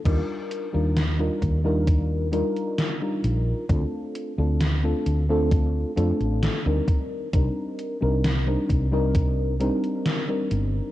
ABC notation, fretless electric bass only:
X:1
M:4/4
L:1/16
Q:1/4=66
K:Eblyd
V:1 name="Fretless electric bass" clef=bass
E,, z2 E,,2 z E,,4 z4 B,,, z | D,, z2 D,,2 z D,,3 z F,, A,,, z D,, z2 | C,, z2 C,,2 z C,,4 z4 G,,, z |]